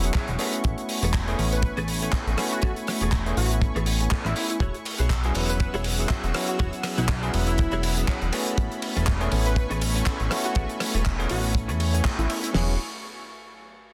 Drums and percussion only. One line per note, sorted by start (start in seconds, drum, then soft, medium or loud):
0.04 closed hi-hat medium
0.14 kick loud
0.14 clap loud
0.14 closed hi-hat medium
0.28 closed hi-hat soft
0.39 open hi-hat loud
0.53 closed hi-hat medium
0.64 kick loud
0.64 closed hi-hat medium
0.78 closed hi-hat soft
0.89 open hi-hat loud
1.03 closed hi-hat medium
1.14 kick loud
1.14 clap loud
1.28 closed hi-hat soft
1.39 open hi-hat loud
1.52 closed hi-hat medium
1.62 kick loud
1.62 closed hi-hat medium
1.77 closed hi-hat soft
1.88 open hi-hat loud
2.02 closed hi-hat medium
2.13 kick loud
2.13 clap loud
2.13 closed hi-hat medium
2.27 closed hi-hat soft
2.38 cross-stick medium
2.38 open hi-hat loud
2.51 closed hi-hat medium
2.62 kick loud
2.62 closed hi-hat medium
2.76 closed hi-hat soft
2.87 cross-stick medium
2.87 open hi-hat loud
3.01 closed hi-hat medium
3.12 kick loud
3.12 clap loud
3.12 closed hi-hat medium
3.26 closed hi-hat soft
3.37 open hi-hat loud
3.51 closed hi-hat medium
3.62 kick loud
3.62 closed hi-hat medium
3.76 closed hi-hat soft
3.86 open hi-hat loud
4.01 closed hi-hat medium
4.11 kick loud
4.11 clap loud
4.11 closed hi-hat medium
4.25 cross-stick medium
4.25 closed hi-hat soft
4.36 open hi-hat loud
4.50 closed hi-hat medium
4.60 kick loud
4.60 closed hi-hat medium
4.74 closed hi-hat soft
4.85 open hi-hat loud
4.85 ride medium
4.98 closed hi-hat medium
5.10 kick loud
5.10 clap loud
5.10 closed hi-hat medium
5.24 closed hi-hat soft
5.35 open hi-hat loud
5.35 ride medium
5.49 closed hi-hat medium
5.60 kick loud
5.60 closed hi-hat medium
5.74 closed hi-hat soft
5.84 open hi-hat loud
5.84 ride medium
5.98 closed hi-hat medium
6.09 kick loud
6.09 clap loud
6.09 closed hi-hat medium
6.24 closed hi-hat soft
6.34 cross-stick medium
6.34 open hi-hat loud
6.34 ride medium
6.48 closed hi-hat medium
6.59 kick loud
6.59 closed hi-hat medium
6.73 closed hi-hat soft
6.83 cross-stick medium
6.83 open hi-hat loud
6.83 ride medium
6.98 closed hi-hat medium
7.09 kick loud
7.09 clap loud
7.09 closed hi-hat medium
7.23 closed hi-hat soft
7.34 open hi-hat loud
7.34 ride medium
7.47 closed hi-hat medium
7.58 kick loud
7.58 closed hi-hat medium
7.71 closed hi-hat soft
7.83 open hi-hat loud
7.83 ride medium
7.97 closed hi-hat medium
8.08 kick loud
8.08 clap loud
8.08 closed hi-hat medium
8.22 closed hi-hat soft
8.33 open hi-hat loud
8.33 ride loud
8.47 closed hi-hat medium
8.58 kick loud
8.58 closed hi-hat medium
8.72 closed hi-hat soft
8.82 open hi-hat medium
8.82 ride loud
8.97 closed hi-hat medium
9.07 kick loud
9.07 clap loud
9.07 closed hi-hat medium
9.21 closed hi-hat soft
9.32 open hi-hat loud
9.32 ride medium
9.46 closed hi-hat medium
9.56 kick loud
9.56 closed hi-hat medium
9.71 closed hi-hat soft
9.81 open hi-hat loud
9.81 ride medium
9.95 closed hi-hat medium
10.06 kick loud
10.06 clap loud
10.06 closed hi-hat medium
10.20 closed hi-hat soft
10.31 cross-stick medium
10.31 open hi-hat loud
10.31 ride medium
10.44 closed hi-hat medium
10.55 kick loud
10.55 closed hi-hat medium
10.69 closed hi-hat medium
10.80 cross-stick medium
10.80 open hi-hat loud
10.80 ride medium
10.94 closed hi-hat medium
11.06 kick loud
11.06 clap loud
11.20 closed hi-hat soft
11.29 open hi-hat loud
11.29 ride medium
11.44 open hi-hat medium
11.55 kick loud
11.69 closed hi-hat soft
11.80 open hi-hat loud
11.80 ride medium
11.94 closed hi-hat medium
12.05 kick loud
12.05 clap loud
12.05 closed hi-hat medium
12.19 closed hi-hat soft
12.30 open hi-hat loud
12.30 ride medium
12.44 closed hi-hat medium
12.54 snare loud
12.54 open hi-hat medium